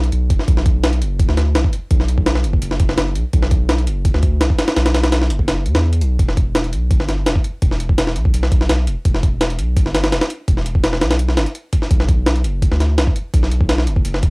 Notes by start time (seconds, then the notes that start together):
Already playing: B1
0.04 closed hi-hat
0.12 B1, closed hi-hat
0.30 E1, kick, closed hi-hat
0.39 snare
0.48 B1, kick, closed hi-hat
0.57 snare
0.66 kick, closed hi-hat
0.84 snare, closed hi-hat
0.93 closed hi-hat
1.02 F#1, closed hi-hat
1.19 kick, closed hi-hat
1.29 D2, snare
1.37 snare, closed hi-hat
1.55 B1, snare, closed hi-hat
1.64 kick
1.73 closed hi-hat
1.91 B1, kick, closed hi-hat
2.00 snare
2.08 closed hi-hat
2.18 kick
2.26 snare, closed hi-hat
2.35 snare
2.44 F#1, closed hi-hat
2.53 kick
2.62 F#1, closed hi-hat
2.71 snare
2.80 F#1, kick, closed hi-hat
2.89 snare
2.98 F#1, snare, closed hi-hat
3.15 B1, closed hi-hat
3.33 B1, kick, closed hi-hat
3.43 snare
3.51 kick, closed hi-hat
3.69 snare, closed hi-hat
3.78 closed hi-hat
3.87 F#1, closed hi-hat
4.05 kick, closed hi-hat
4.14 D2, snare
4.23 kick, closed hi-hat
4.41 B1, snare, closed hi-hat
4.50 kick
4.59 snare, closed hi-hat
4.68 snare, closed hi-hat
4.76 B1, snare, closed hi-hat
4.86 snare, closed hi-hat
4.94 snare, closed hi-hat
5.04 snare, closed hi-hat
5.12 snare, closed hi-hat
5.22 snare
5.30 F#1, closed hi-hat
5.39 kick
5.48 F#1, snare, closed hi-hat
5.66 E2, closed hi-hat
5.75 E2, snare, closed hi-hat
5.93 closed hi-hat
6.01 B1, closed hi-hat
6.19 E1, kick, closed hi-hat
6.29 snare
6.37 kick, closed hi-hat
6.55 snare, closed hi-hat
6.64 closed hi-hat
6.73 B1, closed hi-hat
6.91 kick, closed hi-hat
7.00 G1, snare
7.09 snare, closed hi-hat
7.26 E1, snare, closed hi-hat
7.36 kick
7.44 closed hi-hat
7.62 E1, kick, closed hi-hat
7.71 snare
7.80 closed hi-hat
7.89 kick
7.98 snare, closed hi-hat
8.07 snare
8.16 B1, closed hi-hat
8.25 kick
8.34 B1, closed hi-hat
8.43 snare
8.52 B1, kick, closed hi-hat
8.61 snare
8.69 B1, snare, closed hi-hat
8.87 E1, closed hi-hat
9.05 E1, kick, closed hi-hat
9.14 snare
9.23 kick, closed hi-hat
9.41 snare, closed hi-hat
9.50 closed hi-hat
9.59 B1, closed hi-hat
9.77 kick, closed hi-hat
9.86 G1, snare
9.94 snare, closed hi-hat
10.04 snare, closed hi-hat
10.12 E1, snare, closed hi-hat
10.21 snare, closed hi-hat
10.30 closed hi-hat
10.48 E1, kick, closed hi-hat
10.57 snare
10.66 closed hi-hat
10.75 kick
10.84 snare, closed hi-hat
10.93 snare
11.01 B1, snare, closed hi-hat
11.11 snare, closed hi-hat
11.19 closed hi-hat
11.28 snare
11.37 G1, snare, closed hi-hat
11.46 closed hi-hat
11.55 closed hi-hat
11.73 kick, closed hi-hat
11.82 snare
11.91 B1, kick, closed hi-hat
12.00 snare
12.09 kick, closed hi-hat
12.26 snare, closed hi-hat
12.36 closed hi-hat
12.44 F#1, closed hi-hat
12.62 kick, closed hi-hat
12.71 D2, snare
12.80 snare, closed hi-hat
12.98 B1, snare, closed hi-hat
13.07 kick
13.16 closed hi-hat
13.34 B1, kick, closed hi-hat
13.43 snare
13.52 closed hi-hat
13.61 kick
13.69 snare, closed hi-hat
13.78 snare
13.87 F#1, closed hi-hat
13.96 kick
14.05 F#1, closed hi-hat
14.14 snare
14.23 F#1, kick, closed hi-hat